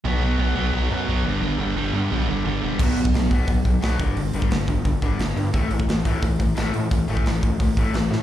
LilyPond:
<<
  \new Staff \with { instrumentName = "Distorted electric guitar" } { \clef bass \time 4/4 \key b \minor \tempo 4 = 175 <b, fis b>8 <b, fis b>8 <b, fis b>8 <b, fis b>8 <b, fis b>8 <b, fis b>8 <b, fis b>8 <g, d g>8 | <g, d g>8 <g, d g>8 <g, d g>8 <g, d g>8 <g, d g>8 <g, d g>8 <g, d g>8 <g, d g>8 | <b, fis b>8 <b, fis>8 <b, fis>8 <b, fis b>8 <b, fis>8 <b, fis>8 <b, fis b>8 <g, d g>8 | <g, d>8 <g, d g>8 <g, d>8 <g, d>8 <g, d>8 <g, d g>8 <g, d>8 <g, d>8 |
<a, e a>8 <a, e>8 <a, e>8 <a, e a>8 <a, e>8 <a, e>8 <a, e a>8 <a, e>8 | <a, e>8 <a, e a>8 <a, e>8 <a, e>8 <a, e>8 <a, e a>8 <a, e>8 <a, e>8 | }
  \new Staff \with { instrumentName = "Distorted electric guitar" } { \clef bass \time 4/4 \key b \minor <b, fis b>8 <b, fis b>8 <b, fis b>8 <b, fis b>8 <b, fis b>8 <b, fis b>8 <b, fis b>8 <g, d g>8 | <g, d g>8 <g, d g>8 <g, d g>8 <g, d g>8 <g, d g>8 <g, d g>8 <g, d g>8 <g, d g>8 | r1 | r1 |
r1 | r1 | }
  \new Staff \with { instrumentName = "Analog synth bass" } { \clef bass \time 4/4 \key b \minor b,,4 b,,8 b,,8 b,,8 fis,8 b,,8 g,,8 | g,,8 g,,8 g,,8 g,8 b,,8 g,,8 g,,8 e,,8 | b,,8 b,,8 b,,8 b,,8 b,,8 b,,8 b,,8 g,,8 | g,,8 g,,8 g,,8 g,,8 g,,8 g,,8 g,,8 g,8 |
a,,8 a,,8 a,,8 a,,8 a,,8 a,,8 a,,8 a,8 | a,,8 a,,8 a,,8 a,,8 a,,8 a,,8 a,,8 a,8 | }
  \new DrumStaff \with { instrumentName = "Drums" } \drummode { \time 4/4 r4 r4 r4 r4 | r4 r4 r4 r4 | <cymc bd>8 hho16 bd16 <hho sn>8 <hho bd>8 <hho bd>8 <hho bd>8 <hho sn>8 <hho bd>8 | hho8 hho16 bd16 <hho sn>8 <hho bd>8 <hho bd>8 <hho bd>8 <hho sn>8 hho8 |
<hho bd>8 hho16 bd16 <hho sn>8 <hho bd>8 <hho bd>8 <hho bd>8 <hho sn>8 hho8 | <hho bd>8 hho16 bd16 <hho sn>8 <hho bd>8 <hho bd>8 <hho bd>8 <hho sn>8 sn8 | }
>>